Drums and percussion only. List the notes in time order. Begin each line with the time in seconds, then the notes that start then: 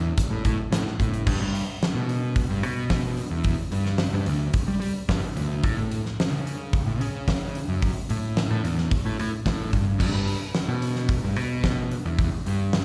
0.18 kick, closed hi-hat
0.45 kick, closed hi-hat
0.72 snare, closed hi-hat
0.87 snare
1.00 kick, closed hi-hat
1.14 closed hi-hat
1.27 kick, crash
1.55 open hi-hat
1.83 snare, open hi-hat
2.09 open hi-hat
2.36 kick, open hi-hat
2.63 open hi-hat
2.90 kick, snare, open hi-hat
3.17 open hi-hat
3.44 kick, open hi-hat
3.72 open hi-hat
3.86 snare
3.98 snare, open hi-hat
4.26 open hi-hat
4.54 kick, open hi-hat
4.82 open hi-hat
5.09 kick, snare, open hi-hat
5.37 open hi-hat
5.64 kick, open hi-hat
5.92 open hi-hat
6.06 snare
6.20 snare, open hi-hat
6.47 open hi-hat
6.73 kick, open hi-hat
7.01 open hi-hat
7.28 kick, snare, open hi-hat
7.55 open hi-hat
7.82 kick, open hi-hat
8.10 open hi-hat
8.37 snare, open hi-hat
8.65 open hi-hat
8.78 snare
8.91 kick, open hi-hat
9.19 open hi-hat
9.46 kick, snare, open hi-hat
9.73 kick, open hi-hat
10.00 kick, crash
10.28 open hi-hat
10.55 snare, open hi-hat
10.82 open hi-hat
10.95 snare
11.09 kick, open hi-hat
11.36 open hi-hat
11.64 kick, snare, open hi-hat
11.91 open hi-hat
12.19 kick, open hi-hat
12.46 open hi-hat
12.73 snare, open hi-hat